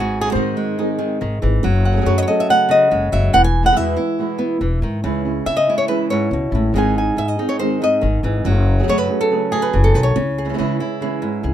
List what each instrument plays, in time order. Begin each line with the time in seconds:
Already playing: upright bass G#1, nylon-string guitar G#2 G#4
0.00 nylon-string guitar F#4
0.21 nylon-string guitar G#4
0.25 nylon-string guitar G#3 C4 D#4 G#4
0.30 nylon-string guitar G#3 C4 D#4 G#4 C5
0.35 upright bass G#2, nylon-string guitar D#3 G#3 C4 D#4 G#4
0.57 nylon-string guitar G#3
0.78 nylon-string guitar D#3 G#3 C4 D#4 G#4
0.99 nylon-string guitar D#3 C4 D#4 G#4
1.20 upright bass G#1, nylon-string guitar D#3, muted nylon-string guitar stroke
1.42 upright bass G#1, nylon-string guitar E3 C4 D#4 G#4
1.63 upright bass F#1, nylon-string guitar F#3, muted nylon-string guitar stroke
1.85 nylon-string guitar F#5
1.92 nylon-string guitar F#3 A3 C#4 G#4
1.96 nylon-string guitar F#3 A3 C#4 G#4
2.01 nylon-string guitar F#3 A3 C#4 G#4
2.06 upright bass F#2, nylon-string guitar C#3 F#3 A3 C#4 G#4 C#5
2.18 nylon-string guitar D#5
2.23 nylon-string guitar C#5
2.27 nylon-string guitar A3 C#4 G#4 A4 D#5
2.40 nylon-string guitar E5
2.48 nylon-string guitar C#3 F#3 A3 C#4 F#5
2.69 nylon-string guitar C#3 D#5
2.91 upright bass F#1, nylon-string guitar G#3, muted nylon-string guitar stroke
3.12 upright bass F#1, nylon-string guitar F#3 E5
3.33 upright bass E1, nylon-string guitar E3 F#5, muted nylon-string guitar stroke
3.44 nylon-string guitar G#5
3.63 nylon-string guitar E3 G#3 B3 E4 F#5
3.67 nylon-string guitar E3 G#3 B3 E4
3.72 nylon-string guitar E3 G#3 B3 E4
3.76 upright bass E2, nylon-string guitar B2 E3 G#3 B3 E4 E5
3.97 nylon-string guitar G#3 B3 E4
4.18 nylon-string guitar B2 E3 G#3 B3 E4
4.39 nylon-string guitar B3
4.61 upright bass E1, nylon-string guitar E3, muted nylon-string guitar stroke
4.82 upright bass G#2, nylon-string guitar D#3
5.03 upright bass C#2, nylon-string guitar C#3 E3 G#3 C#4 E4
5.25 nylon-string guitar G#3 C#4 E4
5.46 upright bass C#3, nylon-string guitar E5, muted nylon-string guitar stroke
5.57 nylon-string guitar D#5
5.67 nylon-string guitar G#3 C#4 E4
5.78 nylon-string guitar C#5
5.88 nylon-string guitar C#3 E3 G#3 C#4 E4 B4
6.09 nylon-string guitar G#2 G#3 C#4 E4 C#5
6.30 upright bass C#2, nylon-string guitar B2, muted nylon-string guitar stroke
6.51 upright bass A1, nylon-string guitar A2 G#3 C#4 E4
6.72 upright bass G#1, nylon-string guitar G#2 D#3 G#3 C4 D#4 G#4
6.77 nylon-string guitar G#4 G#5
6.95 nylon-string guitar C4 D#4 G#4 G#5
7.16 upright bass G#2, nylon-string guitar E5, muted nylon-string guitar stroke
7.28 nylon-string guitar D#5
7.38 nylon-string guitar C4 D#4 G#4
7.49 nylon-string guitar C#5
7.59 nylon-string guitar D#3 G#3 C4 D#4 G#4 C5
7.80 nylon-string guitar G#2 C4 D#4 G#4 D#5
8.01 upright bass G#1, nylon-string guitar D#3, muted nylon-string guitar stroke
8.23 upright bass G#1, nylon-string guitar E3 C4 D#4 G#4
8.44 upright bass F#1, nylon-string guitar F#3, muted nylon-string guitar stroke
8.79 nylon-string guitar F#3 A3 C#4 G#4
8.83 nylon-string guitar F#3 A3 C#4 G#4
8.88 upright bass F#2, nylon-string guitar C#3 F#3 A3 C#4 G#4 C#5
8.98 nylon-string guitar B4
9.09 nylon-string guitar A3 C#4 G#4
9.21 nylon-string guitar A4
9.30 nylon-string guitar C#3 F#3 A3 C#4 G#4
9.51 nylon-string guitar C#3 A3 C#4 G#4
9.62 nylon-string guitar B4
9.73 upright bass F#1, nylon-string guitar E3, muted nylon-string guitar stroke
9.84 nylon-string guitar A4
9.94 upright bass B1, nylon-string guitar D#3 B4
10.03 nylon-string guitar C#5
10.16 upright bass C#2, nylon-string guitar C#3, muted nylon-string guitar stroke
10.38 nylon-string guitar G#4
10.45 nylon-string guitar E3 G#3 C#4 E4
10.49 nylon-string guitar E3 G#3 C#4 E4
10.53 nylon-string guitar E3 G#3 C#4 E4
10.58 nylon-string guitar C#3 E3 G#3 C#4 E4 G#4, upright bass C#3
10.79 nylon-string guitar G#3 C#4 E4
11.01 nylon-string guitar C#3 E3 G#3 C#4 E4 G#4
11.22 nylon-string guitar G#2 G#3 C#4 E4
11.43 upright bass C#2, nylon-string guitar G#4, muted nylon-string guitar stroke